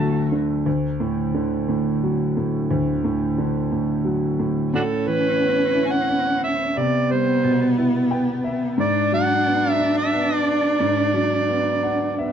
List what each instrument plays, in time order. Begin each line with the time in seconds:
Already playing: analog synth pad D2 F#4, grand piano D2 A2 D3 F#3 A3, cello F#4, harmonica A5
0.32 grand piano D3
0.66 grand piano D2
1.00 grand piano A2
1.34 grand piano D3
1.69 grand piano A2
2.03 grand piano F#3
2.37 grand piano A2
2.71 grand piano D2
3.04 grand piano A2
3.38 grand piano D3
3.72 grand piano A2
4.05 grand piano F#3
4.39 grand piano A2
4.72 grand piano A2, cello C#4, harmonica D4 F#4 A4
5.07 grand piano E3, harmonica B4
5.40 grand piano B3
5.74 grand piano E4
5.87 harmonica G#5
5.92 harmonica F#5
6.09 grand piano B3
6.44 harmonica E5
6.76 grand piano C3, cello B3, harmonica D5
7.10 grand piano G3, harmonica C5
7.44 grand piano B2
7.77 grand piano E4
8.11 grand piano B3 G5
8.44 grand piano E5
8.78 grand piano G#2, cello D4, harmonica D5
9.12 grand piano F#3, harmonica F#5
9.46 grand piano B3
9.71 harmonica E5
9.79 grand piano D4
9.98 harmonica E5
10.13 grand piano B3
10.35 harmonica D5
10.49 harmonica D5
10.80 grand piano G#2
11.14 grand piano F#3
11.48 grand piano B3
11.83 grand piano D4 F#5
12.19 grand piano B3 E5